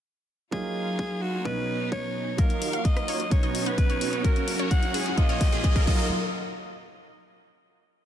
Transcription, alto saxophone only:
0.52 G#4
1.22 F#4
1.45 B4
1.92 C#5
2.38 A#4
2.85 D#5
3.31 C#5
3.78 B4
4.25 A#4
4.71 F#5
5.18 D#5
5.87 D#5

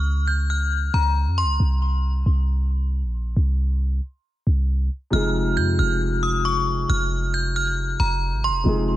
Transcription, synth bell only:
Already playing: F6
0.28 G6
0.50 F6
0.94 A#5
1.38 C6
5.13 F6
5.57 G6
5.79 F6
6.23 D#6
6.45 C#6
6.90 F6
7.34 G6
7.56 F6
8.00 A#5
8.44 C6

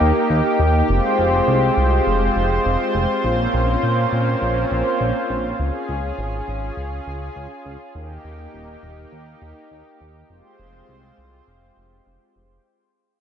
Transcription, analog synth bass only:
0.01 D#2
0.30 D#2
0.60 D#2
0.89 F1
1.18 F1
1.48 C2
1.77 C2
2.07 F1
2.36 F1
2.65 F1
2.95 F1
3.24 A#1
3.54 A#1
3.83 A#2
4.12 A#2
4.42 A#1
4.71 A#1
5.01 A#1
5.30 A#1
5.60 C#2
5.89 C#2
6.18 G#1
6.48 G#1
6.77 C#2
7.07 C#2
7.36 C#2
7.66 C#2
7.95 D#2
8.24 D#2
8.54 D#1
8.83 D#1
9.13 D#2
9.42 D#2
9.71 D#2
10.01 D#2
10.30 F1
10.59 F1
10.89 C2
11.18 C2
11.48 F1
11.77 F1
12.07 F1
12.36 F1

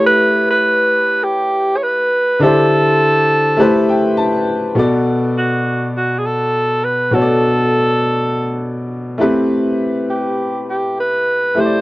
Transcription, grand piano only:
Already playing: A3 E4 G4 B4 C#5
2.39 D3 D4 E4 G4
2.44 C5
3.57 A3 E4 G4 B4
3.61 C5
3.89 G5
4.17 A5
4.75 B2 B3 F#4 A4 D5
7.11 B2 B3 F#4 A4
7.15 C#5
7.22 D5
9.18 A3 E4 G4 B4
9.22 C4
11.55 A3 E4 G4 C5
11.65 D5

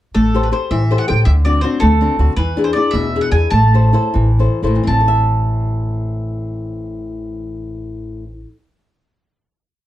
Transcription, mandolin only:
0.14 A4
0.43 B4
0.53 C5
0.71 E5
0.98 F#5
1.08 G5
1.25 E5
1.45 D5
1.61 C5
1.80 A4
2.36 B4
2.64 C5
2.73 D5
2.91 E5
3.21 F#5
3.32 G#5
3.50 A5
4.87 A5

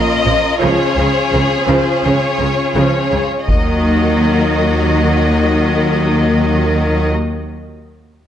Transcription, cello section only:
0.26 A#2
0.62 C#3
0.98 C#3
1.33 C#3
1.68 C#3
2.05 C#3
2.40 C#3
2.76 C#3
3.11 C#3
3.47 D#3

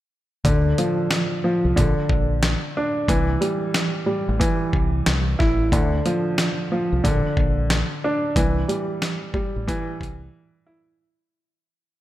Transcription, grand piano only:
0.45 D3
0.78 F3
1.44 F3
1.76 D3
2.77 D4
3.09 E3
3.41 G3
4.06 G3
4.40 E3
5.39 E4
5.72 D3
6.06 F3
6.72 F3
7.04 D3
8.04 D4
8.36 E3
8.68 G3
9.34 G3
9.68 E3
10.66 E4

